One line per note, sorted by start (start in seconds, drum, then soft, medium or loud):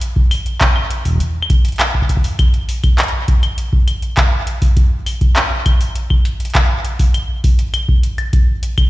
0.01 closed hi-hat medium
0.16 kick loud
0.31 open hi-hat medium
0.31 claves medium
0.46 closed hi-hat medium
0.61 kick loud
0.61 clap loud
0.61 closed hi-hat medium
0.76 claves soft
0.91 closed hi-hat medium
1.05 kick soft
1.05 open hi-hat medium
1.08 kick medium
1.10 kick medium
1.13 kick medium
1.15 kick medium
1.18 kick medium
1.18 closed hi-hat medium
1.43 claves medium
1.50 kick loud
1.50 closed hi-hat medium
1.65 closed hi-hat medium
1.69 closed hi-hat soft
1.72 closed hi-hat soft
1.76 clap loud
1.76 closed hi-hat soft
1.80 closed hi-hat medium
1.80 claves medium
1.83 closed hi-hat soft
1.87 closed hi-hat soft
1.91 kick soft
1.91 closed hi-hat soft
2.02 kick medium
2.09 kick medium
2.09 closed hi-hat medium
2.17 kick medium
2.24 open hi-hat medium
2.39 kick loud
2.39 closed hi-hat medium
2.39 claves medium
2.54 closed hi-hat soft
2.69 open hi-hat medium
2.84 kick loud
2.84 closed hi-hat medium
2.84 claves medium
2.98 clap loud
2.98 closed hi-hat medium
3.03 closed hi-hat medium
3.08 closed hi-hat soft
3.28 kick loud
3.28 closed hi-hat medium
3.43 closed hi-hat soft
3.43 claves medium
3.58 closed hi-hat medium
3.73 kick loud
3.88 closed hi-hat medium
3.88 claves medium
4.02 closed hi-hat soft
4.17 kick loud
4.17 clap loud
4.17 closed hi-hat medium
4.47 closed hi-hat medium
4.62 kick loud
4.62 open hi-hat medium
4.77 kick loud
4.77 closed hi-hat medium
5.06 open hi-hat medium
5.06 claves soft
5.21 kick loud
5.21 closed hi-hat soft
5.36 clap loud
5.36 closed hi-hat medium
5.66 kick loud
5.66 closed hi-hat medium
5.66 claves medium
5.81 open hi-hat medium
5.96 closed hi-hat medium
6.10 kick loud
6.10 claves medium
6.25 closed hi-hat medium
6.40 closed hi-hat soft
6.45 closed hi-hat soft
6.50 closed hi-hat soft
6.55 kick loud
6.55 clap loud
6.55 closed hi-hat medium
6.60 closed hi-hat soft
6.65 closed hi-hat soft
6.85 closed hi-hat medium
6.99 kick loud
6.99 open hi-hat medium
7.14 closed hi-hat medium
7.14 claves medium
7.44 kick loud
7.44 open hi-hat medium
7.59 closed hi-hat medium
7.74 closed hi-hat medium
7.74 claves medium
7.89 kick loud
8.03 closed hi-hat medium
8.18 closed hi-hat soft
8.18 claves soft
8.33 kick loud
8.33 closed hi-hat medium
8.63 closed hi-hat medium
8.78 kick medium
8.78 closed hi-hat soft
8.78 claves medium